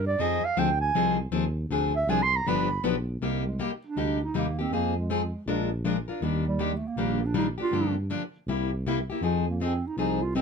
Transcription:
Already playing: G2
0.07 D5
0.18 F2 F3 C4 D#4 G#4 D#5
0.43 F2 F5
0.57 D2 F3 C4 D#4 G#4 G5
0.81 G#5
0.95 C2 F3 C4 D#4 G#4
1.31 D#2 F3 C4 D#4 G#4
1.69 D2 D3 F3 C4 D4 G#4
1.96 E5
2.07 C2 D3 F3 C4 D4 G#4 G#5
2.23 C6
2.36 A#5
2.45 G1 D3 F3 B3 D4 G4 B5
2.83 B1 D3 F3 B3 D4 G4
3.21 C2 C3 G3 A#3 D#4 G4
3.47 G#3
3.59 C3 G3 A#3 D#4 G4
3.87 D4
3.96 D2 C3 G3 A#3 D#4 G4
4.24 D#4
4.34 D#2 C3 G3 A#3 D#4 G4
4.59 A#3 C4 D#4 G4
4.71 F2 F3 A#3 C4 D#4 G#4
4.97 G#3
5.10 F3 C4 D#4 G#4
5.46 A#1 F3 G#3 D4 F4 A#4
5.85 F3 G#3 D4 F4 A#4
6.08 D4 F4 A#4
6.21 D#2 D#3 G3 A#3 D4 G4
6.48 G3
6.59 D#3 G3 A#3 D4 G4
6.77 A3
6.87 A#3
6.96 A#1 D#3 G3 A#3 D4 G4
7.26 D4
7.34 D#3 G3 A#3 D4 D#4 G4
7.58 A#3 D4 G4
7.63 F4
7.71 G2 D3 F3 A#3 D4 G4
8.10 D3 F3 A#3 D4 G4
8.46 C2 C3 G3 A#3 E4 G4
8.86 C3 G3 A#3 E4 G4
9.10 A#3 E4 G4
9.21 F2 F3 C4 D#4 G#4
9.50 A#3
9.60 F3 C4 D#4 G#4
9.87 D#4
9.97 C2 F3 C4 D#4 G#4
10.22 F4
10.35 F3 C4 D#4 G#4

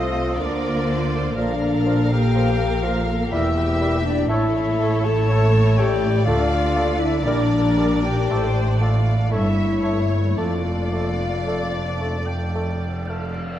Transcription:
Already playing: C2 C3 F3 A3 F4 A4 C5 D#5 F5
0.37 D2 D3 F3 A#3 F4 A#4 D5
0.41 D5
0.87 C5
1.35 A#1 A#2 F3 A#3 D4 A4 A#4 D5 F5
1.85 F3 A#4 F5
2.11 G4 G5
2.35 F3 A#4 F5
2.83 F3 F4 A#4 F5
2.87 F5
3.31 E1 E2 G3 E4 G4 A#4 E5
3.81 G3 A#4 E5
4.04 D4 D5
4.28 A1 A2 A3 E4 A4 C#5 E5
4.81 A3 A4 C#5
5.04 A4 A5
5.29 A3 A4 C#5
5.76 A3 G4 A4 C#5 D5 G5
6.24 D2 D3 A3 D4 F4 D5 F5
6.29 A4
6.74 A3 A4 D5
6.98 E4 E5
7.22 A#1 A#2 G3 D4 A#4 D5
7.27 A#4
7.77 G3 A#4 D5
8.02 G4 G5
8.29 A1 A2 A3 A4 C5 D5
8.80 A3 F4 A4 D5 F5
9.31 G1 G2 A3 E4 A4 C#5 E5
9.82 A3 A4 C#5
10.37 F1 F2 A3 D4 F4 A4 D5 F5
10.91 A3 A4 D5
11.46 A3 A4 D5
12.01 A3 A4
12.26 G5
12.53 A3 A4
13.08 A3 A4 F5

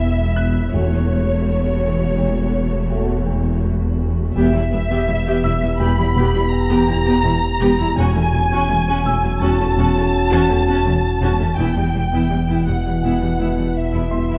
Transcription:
Already playing: E1 E2 B3 E4 E5
0.02 E2
0.36 E2 F#6
0.73 E1 E2 A3 F#4 C#5
1.10 E2
1.46 E3
1.83 E2
2.19 E2
2.54 E2
2.91 E2 A3 F#4
3.27 E2
3.63 E2
3.99 E2
4.34 E1 E2 B3 G4 E5
4.53 E2 G3 E4
4.71 E1 E2 E3 B3
4.89 E2 B3 G4
5.08 E1 E2 E3 G3 E4
5.26 E2 B3 G4
5.43 E1 E2 G3 E4 E6
5.61 E2 E3 B3
5.79 E1 E2 B3 G4 B5
5.97 E2 G3 E4
6.16 E1 E2 B3 G4
6.34 E2 G3 E4
6.51 E2 A#5
6.70 E2 B3 G4
6.88 E1 E2 G3 E4
7.06 E2 B3 G4
7.24 E1 E2 G3 E4
7.60 E1 E2 B3 G4
7.79 E2 G3 E4
7.96 E1 E2 C#4 F#4 G#5
8.15 E2 A3 C#4
8.33 E1 E2 F#3 A3
8.51 E2 C#4 F#4
8.69 E1 E2 E3 A3 C#4
8.87 E2 C#4 F#4
9.05 E1 E2 A3 C#4 E6
9.23 E2 F#3 A3
9.40 E1 E2 C#4 F#4 A5
9.58 E2 A3 C#4
9.77 E1 E2 C#4 F#4
9.96 E2 A3 C#4
10.13 E2
10.32 E2 C#4 F#4
10.49 E1 E2 A3 C#4
10.68 E2 C#4 F#4
10.85 E1 E2 A3 C#4
11.22 E1 E2 C#4 F#4
11.39 E2 A3 C#4
11.58 E1 E2 B2 B3 E4 G5
11.76 E2 G3 B3
11.93 E1 E2 E3 G3
12.12 E2 B3 E4
12.30 E1 E2 E3 G3 B3
12.48 E2 B3 E4
12.66 E1 E2 G3 B3 F#5
12.85 E2 E3 G3
13.03 E1 E2 B3 E4
13.21 E2 G3 B3
13.39 E1 E2 B3 E4
13.57 E2 G3 B3
13.75 E2 E5
13.93 E2 B3 E4
14.11 E1 E2 G3 B3 E5 C6
14.30 E2 B3 E4

